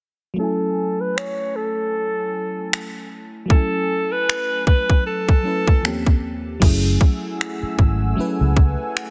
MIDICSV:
0, 0, Header, 1, 7, 480
1, 0, Start_track
1, 0, Key_signature, 3, "minor"
1, 0, Tempo, 779221
1, 237, Time_signature, 4, 2, 24, 8
1, 5607, End_track
2, 0, Start_track
2, 0, Title_t, "Analog synth pad"
2, 0, Program_c, 0, 89
2, 4076, Note_on_c, 0, 57, 74
2, 4076, Note_on_c, 0, 78, 65
2, 4076, Note_on_c, 0, 80, 69
2, 4076, Note_on_c, 0, 88, 79
2, 5607, Note_off_c, 0, 57, 0
2, 5607, Note_off_c, 0, 78, 0
2, 5607, Note_off_c, 0, 80, 0
2, 5607, Note_off_c, 0, 88, 0
2, 5607, End_track
3, 0, Start_track
3, 0, Title_t, "Alto saxophone"
3, 0, Program_c, 1, 65
3, 243, Note_on_c, 1, 69, 91
3, 619, Note_on_c, 1, 71, 90
3, 629, Note_off_c, 1, 69, 0
3, 721, Note_on_c, 1, 73, 103
3, 730, Note_off_c, 1, 71, 0
3, 960, Note_on_c, 1, 69, 91
3, 969, Note_off_c, 1, 73, 0
3, 1918, Note_off_c, 1, 69, 0
3, 2160, Note_on_c, 1, 69, 99
3, 2539, Note_on_c, 1, 71, 99
3, 2549, Note_off_c, 1, 69, 0
3, 2877, Note_off_c, 1, 71, 0
3, 2880, Note_on_c, 1, 71, 95
3, 3102, Note_off_c, 1, 71, 0
3, 3120, Note_on_c, 1, 69, 90
3, 3814, Note_off_c, 1, 69, 0
3, 5607, End_track
4, 0, Start_track
4, 0, Title_t, "FM electric piano"
4, 0, Program_c, 2, 5
4, 208, Note_on_c, 2, 54, 63
4, 223, Note_on_c, 2, 57, 57
4, 237, Note_on_c, 2, 61, 55
4, 253, Note_on_c, 2, 64, 57
4, 268, Note_on_c, 2, 80, 68
4, 335, Control_c, 2, 64, 127
4, 2117, Note_off_c, 2, 54, 0
4, 2125, Note_off_c, 2, 57, 0
4, 2129, Note_on_c, 2, 54, 61
4, 2132, Note_off_c, 2, 61, 0
4, 2140, Note_off_c, 2, 64, 0
4, 2144, Note_on_c, 2, 57, 59
4, 2148, Note_off_c, 2, 80, 0
4, 2159, Note_on_c, 2, 61, 57
4, 2174, Note_on_c, 2, 64, 58
4, 2189, Note_on_c, 2, 80, 70
4, 3318, Note_off_c, 2, 54, 0
4, 3326, Note_off_c, 2, 57, 0
4, 3334, Note_off_c, 2, 61, 0
4, 3342, Note_off_c, 2, 64, 0
4, 3342, Note_on_c, 2, 54, 49
4, 3349, Note_off_c, 2, 80, 0
4, 3349, Note_on_c, 2, 57, 43
4, 3356, Note_on_c, 2, 61, 44
4, 3365, Note_on_c, 2, 64, 45
4, 3372, Note_on_c, 2, 71, 51
4, 3583, Note_on_c, 2, 39, 63
4, 3589, Note_off_c, 2, 54, 0
4, 3589, Note_on_c, 2, 53, 53
4, 3593, Note_off_c, 2, 57, 0
4, 3595, Note_on_c, 2, 58, 58
4, 3596, Note_off_c, 2, 61, 0
4, 3601, Note_off_c, 2, 64, 0
4, 3601, Note_on_c, 2, 60, 54
4, 3604, Note_off_c, 2, 71, 0
4, 3606, Control_c, 2, 64, 0
4, 3607, Note_on_c, 2, 61, 55
4, 3613, Note_on_c, 2, 67, 67
4, 3715, Control_c, 2, 64, 127
4, 4064, Note_on_c, 2, 54, 85
4, 4070, Note_off_c, 2, 39, 0
4, 4072, Note_off_c, 2, 53, 0
4, 4072, Note_off_c, 2, 61, 0
4, 4072, Note_on_c, 2, 57, 76
4, 4076, Note_off_c, 2, 58, 0
4, 4079, Note_off_c, 2, 60, 0
4, 4079, Note_on_c, 2, 61, 76
4, 4084, Control_c, 2, 64, 0
4, 4085, Note_off_c, 2, 67, 0
4, 4087, Note_on_c, 2, 64, 80
4, 4095, Note_on_c, 2, 68, 91
4, 4203, Control_c, 2, 64, 127
4, 4758, Note_off_c, 2, 54, 0
4, 4762, Note_off_c, 2, 57, 0
4, 4766, Note_off_c, 2, 61, 0
4, 4769, Note_off_c, 2, 64, 0
4, 4773, Note_off_c, 2, 68, 0
4, 5023, Note_on_c, 2, 54, 76
4, 5031, Note_on_c, 2, 57, 71
4, 5038, Note_on_c, 2, 61, 74
4, 5046, Note_on_c, 2, 64, 77
4, 5053, Note_on_c, 2, 71, 91
4, 5607, Note_off_c, 2, 54, 0
4, 5607, Note_off_c, 2, 57, 0
4, 5607, Note_off_c, 2, 61, 0
4, 5607, Note_off_c, 2, 64, 0
4, 5607, Note_off_c, 2, 71, 0
4, 5607, End_track
5, 0, Start_track
5, 0, Title_t, "Fingered electric bass"
5, 0, Program_c, 3, 33
5, 4077, Note_on_c, 3, 30, 98
5, 4285, Note_off_c, 3, 30, 0
5, 4797, Note_on_c, 3, 32, 81
5, 5005, Note_off_c, 3, 32, 0
5, 5178, Note_on_c, 3, 37, 85
5, 5385, Note_off_c, 3, 37, 0
5, 5607, End_track
6, 0, Start_track
6, 0, Title_t, "Muted fingered electric bass strokes"
6, 4698, Note_on_c, 9, 29, 45
6, 4759, Note_off_c, 9, 29, 0
6, 5607, End_track
7, 0, Start_track
7, 0, Title_t, "Drums"
7, 726, Note_on_c, 9, 26, 112
7, 787, Note_off_c, 9, 26, 0
7, 1684, Note_on_c, 9, 26, 94
7, 1745, Note_off_c, 9, 26, 0
7, 2156, Note_on_c, 9, 36, 101
7, 2218, Note_off_c, 9, 36, 0
7, 2646, Note_on_c, 9, 26, 112
7, 2707, Note_off_c, 9, 26, 0
7, 2877, Note_on_c, 9, 36, 87
7, 2938, Note_off_c, 9, 36, 0
7, 3016, Note_on_c, 9, 36, 87
7, 3077, Note_off_c, 9, 36, 0
7, 3256, Note_on_c, 9, 36, 81
7, 3317, Note_off_c, 9, 36, 0
7, 3496, Note_on_c, 9, 36, 80
7, 3557, Note_off_c, 9, 36, 0
7, 3603, Note_on_c, 9, 26, 97
7, 3665, Note_off_c, 9, 26, 0
7, 3736, Note_on_c, 9, 36, 83
7, 3798, Note_off_c, 9, 36, 0
7, 4077, Note_on_c, 9, 36, 104
7, 4077, Note_on_c, 9, 49, 75
7, 4138, Note_off_c, 9, 36, 0
7, 4138, Note_off_c, 9, 49, 0
7, 4316, Note_on_c, 9, 36, 91
7, 4378, Note_off_c, 9, 36, 0
7, 4565, Note_on_c, 9, 26, 113
7, 4627, Note_off_c, 9, 26, 0
7, 4796, Note_on_c, 9, 36, 86
7, 4858, Note_off_c, 9, 36, 0
7, 5276, Note_on_c, 9, 36, 92
7, 5338, Note_off_c, 9, 36, 0
7, 5524, Note_on_c, 9, 26, 101
7, 5585, Note_off_c, 9, 26, 0
7, 5607, End_track
0, 0, End_of_file